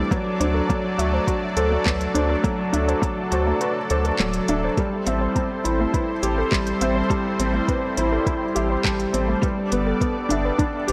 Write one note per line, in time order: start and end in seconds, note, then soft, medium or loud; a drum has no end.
0.00 0.14 G3 loud
0.00 0.13 D4 medium
0.00 4.74 D4 medium
0.00 0.14 E4 medium
0.00 0.14 G4 medium
0.00 9.40 A4 medium
0.00 4.74 D5 medium
0.11 0.39 F#3 loud
0.11 4.74 F#3 medium
0.11 4.74 A3 medium
0.11 0.15 B4 medium
0.11 kick loud
0.11 closed hi-hat soft
0.40 0.61 D2 loud
0.40 0.68 D4 medium
0.40 0.47 C5 medium
0.40 closed hi-hat medium
0.54 0.61 A4 medium
0.69 0.97 F#3 loud
0.69 0.73 A4 medium
0.69 kick loud
0.69 closed hi-hat soft
0.98 1.20 D2 loud
0.98 1.25 F#4 medium
0.98 1.03 E5 medium
0.98 closed hi-hat medium
1.13 1.20 C5 medium
1.27 1.44 F#4 medium
1.27 1.35 A5 medium
1.27 kick loud
1.27 closed hi-hat soft
1.57 1.78 D2 loud
1.57 1.73 A4 medium
1.57 1.64 C5 medium
1.57 closed hi-hat medium
1.72 1.78 A3 medium
1.86 2.07 D2 loud
1.86 2.02 F#3 loud
1.86 1.90 B4 medium
1.86 kick loud
1.86 clap medium
2.01 closed hi-hat soft
2.14 2.36 D2 medium
2.14 2.31 D4 medium
2.14 2.22 C5 medium
2.14 closed hi-hat medium
2.29 2.36 A4 medium
2.44 2.72 F#3 loud
2.44 2.48 A4 medium
2.44 kick loud
2.44 closed hi-hat soft
2.73 2.95 D2 loud
2.73 3.01 D4 medium
2.73 2.77 E5 medium
2.73 closed hi-hat medium
2.88 2.95 C5 medium
2.88 closed hi-hat soft
3.02 3.30 F#3 loud
3.02 3.09 A5 medium
3.02 kick loud
3.02 closed hi-hat soft
3.31 3.53 D2 medium
3.31 3.59 F#4 medium
3.31 3.39 C5 medium
3.31 closed hi-hat medium
3.47 3.53 A3 medium
3.61 3.77 F#4 medium
3.61 3.65 B4 medium
3.61 closed hi-hat soft
3.90 4.11 D2 medium
3.90 4.07 A4 medium
3.90 3.97 C5 medium
3.90 closed hi-hat medium
4.05 4.11 A4 medium
4.05 closed hi-hat soft
4.19 4.40 D1 loud
4.19 4.36 F#3 loud
4.19 4.23 A4 medium
4.19 clap medium
4.33 closed hi-hat soft
4.48 4.70 D1 medium
4.48 4.65 D4 medium
4.48 4.53 E5 medium
4.48 closed hi-hat medium
4.64 4.70 C5 medium
4.77 5.05 G3 loud
4.77 10.93 G3 medium
4.77 9.40 C4 medium
4.77 9.40 E4 medium
4.77 4.82 A4 medium
4.77 9.40 C5 loud
4.77 kick loud
4.77 closed hi-hat soft
5.06 5.28 A1 loud
5.06 5.34 C4 medium
5.06 5.11 E5 medium
5.06 closed hi-hat medium
5.21 5.28 C5 medium
5.35 5.63 C4 medium
5.35 5.43 A5 medium
5.35 kick medium
5.35 closed hi-hat soft
5.64 5.86 A1 loud
5.64 5.92 E4 medium
5.64 5.72 C5 medium
5.64 closed hi-hat medium
5.80 5.86 A3 medium
5.94 6.10 E4 medium
5.94 5.98 B4 medium
5.94 kick loud
5.94 closed hi-hat soft
6.23 6.44 A1 medium
6.23 6.39 G4 medium
6.23 6.30 C5 medium
6.23 closed hi-hat medium
6.38 6.44 A4 medium
6.51 6.73 A1 loud
6.51 6.68 G3 loud
6.51 6.56 A4 medium
6.51 kick loud
6.51 clap medium
6.67 closed hi-hat soft
6.81 7.02 A1 medium
6.81 6.98 C4 medium
6.81 6.85 E5 medium
6.81 closed hi-hat medium
6.96 7.02 C5 medium
7.10 7.38 G3 loud
7.10 7.17 A5 medium
7.10 kick loud
7.10 closed hi-hat soft
7.39 7.60 A1 loud
7.39 7.67 C4 medium
7.39 7.46 C5 medium
7.39 closed hi-hat medium
7.54 7.61 A3 medium
7.68 7.96 C4 medium
7.68 7.73 B4 medium
7.68 kick loud
7.68 closed hi-hat soft
7.97 8.19 A1 loud
7.97 8.25 E4 medium
7.97 8.04 C5 medium
7.97 closed hi-hat medium
8.12 8.19 A4 medium
8.26 8.43 E4 medium
8.26 8.31 A4 medium
8.26 kick loud
8.26 closed hi-hat soft
8.55 8.77 A1 medium
8.55 8.72 G4 medium
8.55 8.60 E5 medium
8.55 closed hi-hat medium
8.70 8.77 C5 medium
8.84 9.06 A1 medium
8.84 9.01 G3 loud
8.84 8.92 A5 medium
8.84 kick loud
8.84 clap medium
9.00 closed hi-hat soft
9.13 9.35 A1 loud
9.13 9.30 C4 medium
9.13 9.21 C5 medium
9.13 closed hi-hat medium
9.28 9.35 A3 medium
9.42 9.70 G3 loud
9.42 10.93 B3 medium
9.42 10.93 D4 medium
9.42 10.93 A4 medium
9.42 9.47 B4 medium
9.42 10.93 D5 loud
9.42 kick loud
9.42 closed hi-hat soft
9.71 9.94 G1 loud
9.71 9.99 B3 medium
9.71 9.79 B4 medium
9.71 closed hi-hat medium
9.87 9.94 A4 medium
10.00 10.29 B3 medium
10.00 10.06 A4 medium
10.00 kick loud
10.00 closed hi-hat soft
10.29 10.52 G1 loud
10.29 10.57 D4 medium
10.29 10.35 E5 medium
10.29 closed hi-hat medium
10.45 10.52 B4 medium
10.58 10.76 D4 medium
10.58 10.67 A5 medium
10.58 kick loud
10.58 closed hi-hat soft
10.88 10.93 G1 medium
10.88 10.93 G4 medium
10.88 10.93 B4 medium
10.88 closed hi-hat medium